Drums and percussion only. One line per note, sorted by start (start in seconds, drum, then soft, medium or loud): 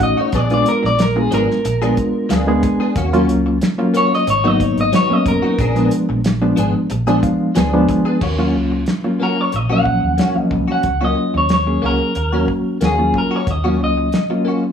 0.00 kick medium
0.00 closed hi-hat medium
0.32 kick loud
0.32 closed hi-hat medium
0.50 closed hi-hat soft
0.66 closed hi-hat medium
0.85 snare soft
0.99 snare loud
0.99 closed hi-hat medium
1.32 closed hi-hat medium
1.51 snare soft
1.65 closed hi-hat medium
1.82 closed hi-hat soft
1.97 kick medium
1.97 closed hi-hat medium
2.30 snare loud
2.30 closed hi-hat loud
2.63 kick loud
2.63 closed hi-hat medium
2.96 kick loud
2.96 closed hi-hat medium
3.13 closed hi-hat soft
3.29 closed hi-hat medium
3.61 snare loud
3.61 closed hi-hat medium
3.94 closed hi-hat medium
4.14 snare soft
4.27 closed hi-hat medium
4.60 kick medium
4.60 closed hi-hat medium
4.78 closed hi-hat soft
4.93 snare loud
4.93 closed hi-hat medium
5.26 kick loud
5.26 closed hi-hat medium
5.59 kick loud
5.59 closed hi-hat medium
5.76 closed hi-hat soft
5.91 closed hi-hat medium
6.24 snare loud
6.24 closed hi-hat medium
6.57 closed hi-hat medium
6.90 closed hi-hat medium
7.07 closed hi-hat soft
7.23 kick medium
7.23 closed hi-hat medium
7.55 snare loud
7.55 closed hi-hat medium
7.89 kick loud
7.89 closed hi-hat medium
8.21 kick loud
8.21 crash medium
8.86 snare loud
8.86 closed hi-hat medium
9.52 closed hi-hat medium
9.86 kick medium
10.18 snare loud
10.18 closed hi-hat medium
10.51 kick medium
10.83 kick loud
10.83 closed hi-hat medium
11.49 snare loud
11.49 closed hi-hat medium
12.15 closed hi-hat medium
12.48 kick medium
12.81 snare loud
12.81 closed hi-hat medium
13.14 kick medium
13.47 kick loud
13.47 closed hi-hat medium
14.12 snare loud
14.12 closed hi-hat medium